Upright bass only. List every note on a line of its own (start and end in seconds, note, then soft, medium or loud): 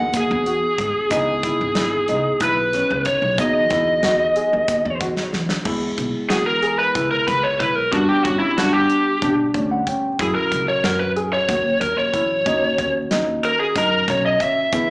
0.00 0.24 D#2 medium
0.31 0.57 E2 loud
0.79 0.92 G#2 medium
1.11 1.51 C#2 medium
1.61 2.11 G#1 medium
2.09 2.22 C#2 medium
2.41 2.80 B1 medium
2.90 3.03 C#2 medium
3.22 3.35 B1 medium
3.38 3.64 E2 medium
3.71 3.97 E2 medium
4.04 4.30 E2 medium
4.53 4.79 D#2 medium
4.85 5.11 E2 medium
5.34 5.47 E3 medium
5.65 5.79 E2 loud
5.98 6.11 B1 medium
6.30 6.82 E2 medium
6.95 7.08 C#2 medium
7.28 7.60 C#2 medium
7.60 7.86 B1 medium
7.93 8.06 G2 medium
8.25 8.38 G2 medium
8.57 8.84 G2 medium
9.22 9.48 B2 medium
9.54 9.81 D2 medium
10.19 10.32 F#2 loud
10.52 10.65 C#2 medium
10.85 11.37 F#2 medium
11.49 11.62 D#2 loud
11.81 12.14 D#2 medium
12.14 12.40 E2 medium
12.46 12.59 D#2 medium
12.79 12.92 D#2 medium
13.11 13.37 D#2 medium
13.76 14.02 F#2 medium
14.08 14.34 B1 medium
14.73 14.86 E2 loud